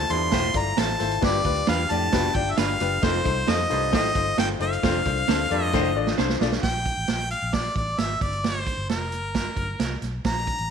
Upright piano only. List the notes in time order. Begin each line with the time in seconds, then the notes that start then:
0.09 E4 F4 A4 C5
0.31 E4 F4 A4 C5
0.54 E4 F4 A4 D5
0.77 E4 F4 A4 C5
0.99 E4 F4 A4 C5
1.21 G2 D4 F4 G4 B4
1.44 D4 F4 G4 B4
1.67 D4 F4 G4 B4
1.90 D4 F4 G4 D5
2.12 D4 F4 G4 B4
2.35 D4 F4 G4 D5
2.57 D4 F4 G4 B4
2.80 D4 F4 G4 B4
3.02 D#4 F4 A4 C5
3.24 D#4 F4 A4 C5
3.46 D#4 F4 A4 C5
3.69 D#4 F4 A4 C5
3.92 D#4 F4 A4 C5
4.14 D#4 F4 A4 C5
4.37 D#4 F4 A4 C5
4.60 D#4 F4 A4 C5
4.83 D4 F4 A4 C5
5.05 D4 F4 A4 C5
5.28 D4 F4 A4 C5
5.50 D4 F4 A4 D5
5.73 D4 F4 A4 C5
5.95 D4 F4 A4 D5
6.18 D4 F4 A4 C5
6.41 D4 F4 A4 D5